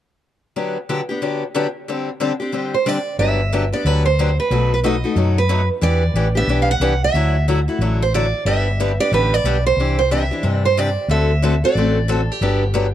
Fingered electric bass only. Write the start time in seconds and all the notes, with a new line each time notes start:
3.19 G1
3.85 D2
4.51 B1
5.16 F#2
5.82 E2
6.14 A1
6.47 B1
6.80 C2
7.14 D2
7.79 A1
8.45 G1
9.12 A1
9.44 B1
9.77 C2
10.43 G2
11.08 D2
11.75 A1
12.41 G1